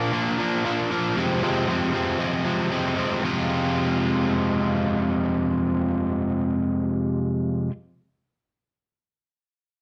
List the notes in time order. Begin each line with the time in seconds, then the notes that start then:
Already playing: A#2 F3 A#3 D4
0.13 A#2 F3 A#3 D4
0.39 A#2 F3 A#3 D4
0.65 A#2 F3 A#3 D4
0.91 A#2 F3 A#3 D4
1.17 F2 C3 F3 G#3 C4
1.42 F2 C3 F3 G#3 C4
1.68 F2 C3 F3 G#3 C4
1.94 F2 C3 F3 G#3 C4
2.19 F2 C3 F3 G#3 C4
2.45 F2 C3 F3 G#3 C4
2.71 F2 C3 F3 G#3 C4
2.97 F2 C3 F3 G#3 C4
3.23 F2 C3 F3 G#3 C4
3.27 F4